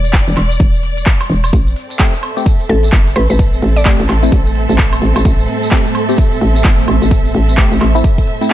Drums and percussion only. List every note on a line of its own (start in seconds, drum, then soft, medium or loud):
0.04 closed hi-hat soft
0.04 tambourine medium
0.13 kick loud
0.13 clap loud
0.13 closed hi-hat medium
0.13 tambourine medium
0.27 closed hi-hat medium
0.27 tambourine soft
0.36 clap soft
0.36 open hi-hat loud
0.36 high woodblock medium
0.51 closed hi-hat soft
0.51 tambourine medium
0.60 kick loud
0.60 closed hi-hat medium
0.60 tambourine medium
0.74 closed hi-hat soft
0.74 tambourine soft
0.83 open hi-hat loud
0.97 closed hi-hat soft
0.97 tambourine medium
1.06 kick loud
1.06 clap loud
1.06 closed hi-hat medium
1.06 tambourine medium
1.21 closed hi-hat soft
1.21 tambourine soft
1.21 high woodblock medium
1.30 open hi-hat loud
1.44 closed hi-hat soft
1.44 tambourine medium
1.44 high woodblock medium
1.53 kick loud
1.53 closed hi-hat medium
1.53 tambourine medium
1.67 closed hi-hat soft
1.67 tambourine soft
1.76 open hi-hat loud
1.90 closed hi-hat soft
1.90 tambourine medium
1.99 kick loud
1.99 clap loud
1.99 closed hi-hat medium
1.99 tambourine medium
2.14 closed hi-hat medium
2.14 tambourine soft
2.23 open hi-hat medium
2.23 high woodblock medium
2.37 closed hi-hat soft
2.37 tambourine medium
2.46 kick loud
2.46 closed hi-hat medium
2.46 tambourine medium
2.60 closed hi-hat soft
2.60 tambourine soft
2.69 open hi-hat loud
2.83 closed hi-hat soft
2.83 tambourine medium
2.92 kick loud
2.92 clap loud
2.92 closed hi-hat medium
2.92 tambourine medium
3.07 tambourine soft
3.16 open hi-hat medium
3.16 high woodblock medium
3.30 closed hi-hat soft
3.30 tambourine medium
3.39 kick loud
3.39 closed hi-hat medium
3.39 tambourine medium
3.53 closed hi-hat soft
3.53 tambourine soft
3.62 open hi-hat loud
3.76 closed hi-hat soft
3.76 tambourine medium
3.85 kick loud
3.85 clap loud
3.85 closed hi-hat medium
3.85 tambourine medium
4.00 closed hi-hat medium
4.00 tambourine soft
4.08 clap soft
4.08 open hi-hat medium
4.08 high woodblock medium
4.23 closed hi-hat soft
4.23 tambourine medium
4.32 kick loud
4.32 closed hi-hat medium
4.32 tambourine medium
4.46 closed hi-hat soft
4.46 tambourine soft
4.55 open hi-hat loud
4.69 closed hi-hat soft
4.69 tambourine medium
4.78 kick loud
4.78 clap loud
4.78 closed hi-hat medium
4.78 tambourine medium
4.93 closed hi-hat soft
4.93 tambourine soft
4.93 high woodblock medium
5.02 open hi-hat medium
5.16 closed hi-hat medium
5.16 tambourine medium
5.16 high woodblock medium
5.25 kick loud
5.25 closed hi-hat medium
5.25 tambourine medium
5.39 closed hi-hat soft
5.39 tambourine soft
5.48 open hi-hat loud
5.62 closed hi-hat soft
5.62 tambourine medium
5.71 kick loud
5.71 clap loud
5.71 closed hi-hat medium
5.71 tambourine medium
5.86 closed hi-hat medium
5.86 tambourine soft
5.95 open hi-hat medium
5.95 high woodblock medium
6.09 closed hi-hat soft
6.09 tambourine medium
6.18 kick loud
6.18 closed hi-hat medium
6.18 tambourine medium
6.32 closed hi-hat soft
6.32 tambourine soft
6.41 open hi-hat loud
6.55 closed hi-hat soft
6.55 tambourine medium
6.64 kick loud
6.64 clap loud
6.64 closed hi-hat medium
6.79 tambourine soft
6.88 open hi-hat medium
6.88 high woodblock medium
7.02 closed hi-hat medium
7.02 tambourine medium
7.11 kick loud
7.11 closed hi-hat medium
7.11 tambourine medium
7.25 closed hi-hat soft
7.25 tambourine soft
7.34 open hi-hat loud
7.49 closed hi-hat soft
7.49 tambourine medium
7.57 kick loud
7.57 clap loud
7.57 closed hi-hat medium
7.72 closed hi-hat medium
7.72 tambourine soft
7.80 clap soft
7.80 open hi-hat medium
7.80 high woodblock medium
7.95 closed hi-hat soft
7.95 tambourine medium
8.04 kick loud
8.04 closed hi-hat medium
8.04 tambourine medium
8.18 kick medium
8.18 closed hi-hat soft
8.18 tambourine soft
8.27 open hi-hat loud
8.42 closed hi-hat soft
8.42 tambourine medium